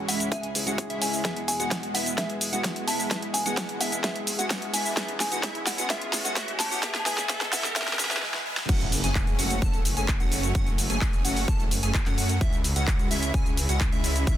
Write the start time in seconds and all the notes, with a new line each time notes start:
Already playing: C#2 G#2 E3 G#3 C#4 E4 G#4
0.08 G#3 C#4 E4 E5 F#5, open hi-hat, cabasa
0.20 closed hi-hat, cabasa
0.32 E5 G#5, kick, closed hi-hat, cabasa
0.43 closed hi-hat
0.55 G#3 C#4 E4 G#4, open hi-hat, cabasa
0.66 G#3 C#4 E4 F#4 G#4 F#5, closed hi-hat, cabasa
0.78 kick, closed hi-hat, cabasa
0.90 G#3 C#4 E4 E5, closed hi-hat
1.02 G#5, open hi-hat, cabasa
1.14 cabasa
1.24 E2 B2 G#3 B3 E4 G#4 E5, kick, snare, closed hi-hat, riser, cabasa
1.37 closed hi-hat
1.48 G#5, open hi-hat, cabasa
1.59 G#3 B3 E4 F#4 G#4 F#5, closed hi-hat, cabasa
1.71 kick, snare, closed hi-hat, cabasa
1.83 closed hi-hat
1.94 G#3 B3 E4 E5 F#5, open hi-hat, cabasa
2.06 closed hi-hat, cabasa
2.17 G#3 B3 E4 G#4 E5, kick, snare, closed hi-hat, cabasa
2.30 closed hi-hat
2.41 open hi-hat, cabasa
2.51 G#3 B3 E4 F#4 G#4 F#5, closed hi-hat, cabasa
2.64 kick, snare, closed hi-hat, cabasa
2.76 closed hi-hat
2.87 G#3 B3 E4 E5 A5, open hi-hat, cabasa
3.00 cabasa
3.10 G#3 B3 E4 G#4 E5, kick, snare, closed hi-hat, cabasa
3.22 closed hi-hat
3.34 G#5, open hi-hat, cabasa
3.45 G#3 B3 E4 F#4 G#4 F#5, closed hi-hat, cabasa
3.57 kick, snare, closed hi-hat, cabasa
3.69 closed hi-hat
3.80 G#3 B3 E4 E5 F#5, open hi-hat, cabasa
3.92 closed hi-hat, cabasa
4.03 G#3 B3 E4 G#4 E5, kick, snare, closed hi-hat, cabasa
4.16 closed hi-hat
4.27 open hi-hat, cabasa
4.38 G#3 B3 E4 F#4 G#4 F#5, closed hi-hat, cabasa
4.50 kick, snare, closed hi-hat, cabasa
4.62 closed hi-hat
4.73 G#3 B3 E4 E5 G#5, open hi-hat, cabasa
4.86 cabasa
4.96 A2 E3 G#3 B3 C#4 E4 G#4 E5, kick, snare, closed hi-hat, cabasa
5.08 closed hi-hat
5.20 G#5, snare, open hi-hat, cabasa
5.30 G#3 B3 E4 F#4 G#4 F#5, closed hi-hat, cabasa
5.43 G#3 B3 E4 G#4 E5, kick, snare, closed hi-hat, cabasa
5.55 closed hi-hat
5.67 F#5, snare, open hi-hat, cabasa
5.77 G#3 B3 E4 F#4 G#4 F#5, closed hi-hat, cabasa
5.89 G#3 B3 E4 G#4 E5, kick, snare, closed hi-hat, cabasa
6.02 closed hi-hat
6.13 snare, open hi-hat, cabasa
6.24 G#3 B3 E4 F#4 G#4 F#5, closed hi-hat, cabasa
6.36 G#3 B3 E4 G#4 E5, kick, snare, closed hi-hat, cabasa
6.48 closed hi-hat
6.60 A5, snare, open hi-hat, cabasa
6.70 G#3 B3 E4 F#4 G#4 F#5, cabasa
6.82 F#3 G#3 B3 E4 G#4 E5, kick, snare, closed hi-hat, cabasa
6.95 snare, closed hi-hat
6.99 A5
7.06 G#3 B3 E4 G#4 E5 G#5, snare, open hi-hat, cabasa
7.18 snare, closed hi-hat, cabasa
7.29 G#3 B3 E4 G#4 E5, kick, snare, closed hi-hat, cabasa
7.41 snare, closed hi-hat
7.52 G#3 B3 E4 G#4 E5 F#5, snare, open hi-hat, cabasa
7.64 snare, cabasa
7.75 G#3 B3 E4 G#4 E5, kick, snare, closed hi-hat, cabasa
7.82 snare
7.88 snare, closed hi-hat
7.93 snare
7.99 G#3 B3 E4 G#4 E5, snare, open hi-hat, cabasa
8.05 snare
8.11 snare, closed hi-hat, cabasa
8.17 snare
8.22 G#3 B3 E4, snare
8.34 snare
8.46 G#3 B3 E4
8.57 snare
8.69 F#1 F#3 A3 C#4 F#4 F#5, kick, closed hi-hat, crash, impact, cabasa
8.81 closed hi-hat, cabasa
8.92 open hi-hat, cabasa
9.04 F#1 A3 C#4 G#4 G#5, closed hi-hat, cabasa
9.15 kick, clap, closed hi-hat, cabasa
9.27 closed hi-hat, cabasa
9.39 F#1 A3 C#4 F#4 F#5, open hi-hat, cabasa
9.50 closed hi-hat, cabasa
9.62 F#1 A3 A4 A5, kick, closed hi-hat, cabasa
9.74 closed hi-hat, cabasa
9.85 open hi-hat, cabasa
9.97 F#1 A3 C#4 G#4 G#5, closed hi-hat, cabasa
10.08 kick, clap, closed hi-hat, cabasa
10.20 F#1 A3 C#4 F#4 F#5, closed hi-hat, cabasa
10.32 open hi-hat, cabasa
10.43 closed hi-hat, cabasa
10.55 F#1 F#5, kick, closed hi-hat, cabasa
10.67 closed hi-hat, cabasa
10.78 open hi-hat, cabasa
10.90 F#1 A3 C#4 G#4 G#5, closed hi-hat, cabasa
11.01 kick, clap, closed hi-hat, cabasa
11.13 closed hi-hat, cabasa
11.25 F#1 A3 C#4 F#4 F#5, open hi-hat, cabasa
11.36 open hi-hat, cabasa
11.48 F#1 A5, kick, cabasa
11.60 closed hi-hat, cabasa
11.71 open hi-hat, cabasa
11.83 F#1 A3 C#4 G#4 G#5, closed hi-hat, cabasa
11.94 kick, clap, closed hi-hat, cabasa
12.06 F#2 A3 C#4 F#4 F#5, clap, closed hi-hat, cabasa
12.18 open hi-hat, cabasa
12.29 closed hi-hat, cabasa
12.41 C#2 C#3 G#3 C#4 E4 E5, kick, closed hi-hat, cabasa
12.53 closed hi-hat, cabasa
12.64 open hi-hat, cabasa
12.76 C#2 G#3 C#4 F#4 F#5, closed hi-hat, cabasa
12.87 kick, clap, closed hi-hat, cabasa
12.99 closed hi-hat, cabasa
13.11 C#2 G#3 C#4 E4 E5, open hi-hat, cabasa
13.23 closed hi-hat, cabasa
13.34 C#2 G#5, kick, closed hi-hat, cabasa
13.46 closed hi-hat, cabasa
13.57 open hi-hat, cabasa
13.69 C#2 G#3 C#4 F#4 F#5, closed hi-hat, cabasa
13.81 kick, clap, closed hi-hat, cabasa
13.92 C#2 G#3 C#4 E4 E5, closed hi-hat, cabasa
14.04 open hi-hat, cabasa
14.16 closed hi-hat, cabasa
14.27 C#2 E5, kick, closed hi-hat, cabasa